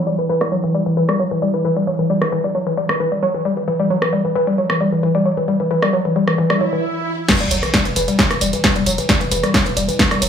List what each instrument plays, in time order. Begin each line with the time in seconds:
Already playing: ambient pad E3
0.07 synth arpeggio sound G3
0.19 synth arpeggio sound E3
0.29 synth arpeggio sound E3
0.41 synth arpeggio sound G3, cross-stick
0.52 synth arpeggio sound F#3
0.64 synth arpeggio sound E3
0.75 synth arpeggio sound G3
0.86 synth arpeggio sound E3
0.97 synth arpeggio sound E3
1.09 synth arpeggio sound G3, cross-stick
1.20 synth arpeggio sound F#3
1.31 synth arpeggio sound E3
1.42 synth arpeggio sound G3
1.54 synth arpeggio sound E3
1.65 synth arpeggio sound E3
1.77 synth arpeggio sound G3
1.87 synth arpeggio sound F#3
1.99 synth arpeggio sound E3
2.10 synth arpeggio sound G3
2.22 synth arpeggio sound E3, cross-stick
2.32 synth arpeggio sound E3
2.44 synth arpeggio sound G3
2.55 synth arpeggio sound F#3
2.67 synth arpeggio sound E3
2.77 synth arpeggio sound G3
2.89 synth arpeggio sound E3, cross-stick
3.00 synth arpeggio sound E3
3.12 synth arpeggio sound G3
3.23 synth arpeggio sound F#3
3.34 synth arpeggio sound E3
3.45 synth arpeggio sound G3
3.57 synth arpeggio sound E3
3.68 synth arpeggio sound E3
3.80 synth arpeggio sound G3
3.90 synth arpeggio sound F#3
4.02 synth arpeggio sound E3, cross-stick
4.13 synth arpeggio sound G3
4.25 synth arpeggio sound E3
4.36 synth arpeggio sound E3
4.47 synth arpeggio sound G3
4.58 synth arpeggio sound F#3
4.70 synth arpeggio sound E3, cross-stick
4.81 synth arpeggio sound G3
4.92 synth arpeggio sound E3
5.03 synth arpeggio sound E3
5.15 synth arpeggio sound G3
5.26 synth arpeggio sound F#3
5.37 synth arpeggio sound E3
5.48 synth arpeggio sound G3
5.60 synth arpeggio sound E3
5.71 synth arpeggio sound E3
5.82 synth arpeggio sound G3, cross-stick
5.93 synth arpeggio sound F#3
6.05 synth arpeggio sound E3
6.16 synth arpeggio sound G3
6.28 synth arpeggio sound E3, cross-stick
6.38 synth arpeggio sound E3, swell
6.50 synth arpeggio sound G3, cross-stick
6.61 synth arpeggio sound F#3
6.73 synth arpeggio sound E3
7.28 ambient pad E3, synth arpeggio sound E3, kick, snare, closed hi-hat, crash, ride, tambourine, sub drop
7.40 sub bass E1, synth arpeggio sound G3, closed hi-hat, tambourine
7.51 sub bass E1, synth arpeggio sound F#3, open hi-hat, tambourine
7.63 synth arpeggio sound E3, cross-stick, closed hi-hat, tambourine
7.74 synth arpeggio sound G3, kick, snare, closed hi-hat, ride, tambourine
7.85 sub bass E1, synth arpeggio sound E3, closed hi-hat, tambourine
7.96 sub bass E1, synth arpeggio sound E3, open hi-hat, tambourine
8.08 synth arpeggio sound G3, closed hi-hat, tambourine
8.19 synth arpeggio sound F#3, kick, snare, closed hi-hat, ride, tambourine
8.31 sub bass E1, synth arpeggio sound E3, cross-stick, closed hi-hat, tambourine
8.41 sub bass E1, synth arpeggio sound G3, open hi-hat, tambourine
8.53 synth arpeggio sound E3, closed hi-hat, tambourine
8.64 synth arpeggio sound E3, kick, snare, closed hi-hat, ride, tambourine
8.76 sub bass E1, synth arpeggio sound G3, closed hi-hat, tambourine
8.86 sub bass E1, synth arpeggio sound F#3, open hi-hat, tambourine
8.98 synth arpeggio sound E3, closed hi-hat, tambourine
9.09 synth arpeggio sound G3, kick, snare, closed hi-hat, ride, tambourine
9.21 sub bass E1, synth arpeggio sound E3, closed hi-hat, tambourine
9.31 sub bass E1, synth arpeggio sound E3, open hi-hat, tambourine
9.43 synth arpeggio sound G3, cross-stick, closed hi-hat, tambourine
9.54 synth arpeggio sound F#3, kick, snare, closed hi-hat, ride, tambourine
9.66 sub bass E1, synth arpeggio sound E3, closed hi-hat, tambourine
9.77 sub bass E1, synth arpeggio sound G3, open hi-hat, tambourine
9.88 synth arpeggio sound E3, closed hi-hat, tambourine
9.99 synth arpeggio sound E3, kick, snare, closed hi-hat, ride, tambourine
10.11 sub bass E1, synth arpeggio sound G3, cross-stick, closed hi-hat, tambourine
10.22 sub bass E1, synth arpeggio sound F#3, open hi-hat, tambourine